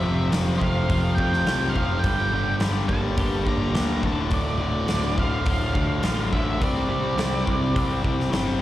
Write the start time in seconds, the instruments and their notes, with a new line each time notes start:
Already playing: clean electric guitar F2, lead electric guitar E5
0.02 picked electric bass F1, distorted electric guitar F2 C3 F3, clean electric guitar C3
0.30 picked electric bass F1, distorted electric guitar F2 C3 F3, clean electric guitar F3, snare, open hi-hat
0.59 picked electric bass F1, distorted electric guitar F2 C3 F3, clean electric guitar A3, lead electric guitar F5, kick
0.88 picked electric bass F1, distorted electric guitar F2 C3 F3, clean electric guitar F4, kick, open hi-hat
1.15 distorted electric guitar F2 C3 F3, picked electric bass F2, clean electric guitar A3, lead electric guitar G5, kick
1.33 snare
1.46 picked electric bass C2, distorted electric guitar F2 C3 F3, clean electric guitar F4, snare, open hi-hat
1.70 lead electric guitar F5
1.74 picked electric bass F1, distorted electric guitar F2 C3 F3, clean electric guitar C4, kick
1.99 clean electric guitar G2, distorted electric guitar G2, lead electric guitar G5
2.04 picked electric bass G1, distorted electric guitar D3 G3, kick, open hi-hat
2.31 picked electric bass G1, distorted electric guitar G2 D3 G3, clean electric guitar D3
2.60 picked electric bass G1, distorted electric guitar G2 D3 G3, clean electric guitar G3, snare, open hi-hat
2.88 picked electric bass G1, distorted electric guitar G2 D3 G3, clean electric guitar A#3, lead electric guitar A5, kick
3.17 picked electric bass G1, distorted electric guitar G2 D3 G3, clean electric guitar G4, kick, open hi-hat
3.45 picked electric bass G1, distorted electric guitar G2 D3 G3, clean electric guitar A#3, lead electric guitar A#5, kick
3.74 picked electric bass D2, distorted electric guitar G2 D3 G3, clean electric guitar G4, snare, open hi-hat
4.03 picked electric bass D1, clean electric guitar D2, distorted electric guitar D2 A2 D3, lead electric guitar A5, kick
4.31 picked electric bass D1, distorted electric guitar D2 A2 D3, clean electric guitar D2, lead electric guitar D5, kick, open hi-hat
4.59 picked electric bass D1, distorted electric guitar D2 A2 D3, clean electric guitar A2
4.88 picked electric bass D1, distorted electric guitar D2 A2 D3, clean electric guitar A2, snare, open hi-hat
5.17 picked electric bass D1, distorted electric guitar D2 A2 D3, clean electric guitar D3, lead electric guitar F5, kick
5.45 picked electric bass D1, distorted electric guitar D2 A2 D3, clean electric guitar F4, kick, open hi-hat
5.73 distorted electric guitar D2 A2 D3, picked electric bass D2, clean electric guitar D3, kick
6.02 picked electric bass A1, distorted electric guitar D2 A2 D3, clean electric guitar F4, snare, open hi-hat
6.32 picked electric bass A1, distorted electric guitar D2 A2 D3, clean electric guitar A3, lead electric guitar E5, kick
6.60 picked electric bass C2, clean electric guitar C3, distorted electric guitar C3 G3 C4, lead electric guitar D5, kick, open hi-hat
6.88 picked electric bass C2, distorted electric guitar C3 G3 C4, clean electric guitar G3
7.16 picked electric bass C2, distorted electric guitar C3 G3 C4, clean electric guitar C4, snare, open hi-hat
7.45 picked electric bass C2, distorted electric guitar C3 G3 C4, clean electric guitar E4, kick
7.74 picked electric bass C2, distorted electric guitar C3 G3 C4, clean electric guitar C5, kick, open hi-hat
8.03 picked electric bass C2, distorted electric guitar C3 G3 C4, clean electric guitar E4, kick
8.20 snare
8.30 picked electric bass G1, distorted electric guitar C3 G3 C4, clean electric guitar C5, snare, open hi-hat
8.59 distorted electric guitar C3